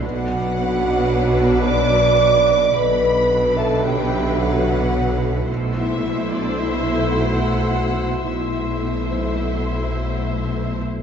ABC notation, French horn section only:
X:1
M:5/4
L:1/8
Q:1/4=109
K:Bphr
V:1 name="French horn section"
F6 d4 | B3 A G2 F4 | z E2 D E2 F4 | E8- E z |]